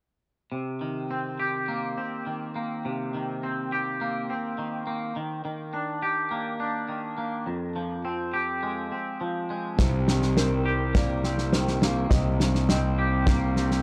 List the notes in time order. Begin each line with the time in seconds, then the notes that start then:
0.52 C3
0.81 D#3
1.11 C4
1.40 G4
1.68 A#3
1.97 C4
2.26 D#3
2.55 A#3
2.85 C3
3.14 D#3
3.43 C4
3.72 G4
4.01 A#3
4.30 C4
4.58 D#3
4.87 A#3
5.16 D#3
5.45 D#3
5.74 D4
6.02 G4
6.31 A#3
6.60 D4
6.89 D#3
7.18 A#3
7.46 F2
7.76 F3
8.05 C4
8.34 G4
8.63 G#3
8.92 C4
9.21 F3
9.50 G#3
9.79 C2 C3 C5, kick, snare
10.08 D#3, snare
10.22 snare
10.37 C4 A#4, snare
10.65 G4
10.94 A#3 D5, kick, snare
11.24 C4, snare
11.38 snare
11.52 D#3 C5, snare
11.68 snare
11.82 A#3, snare
12.10 C2 C3 D#5, kick, snare
12.40 D#3, snare
12.55 snare
12.68 C4 D#5, snare
12.99 G4
13.26 A#3 C5, kick, snare
13.56 C4, snare
13.71 snare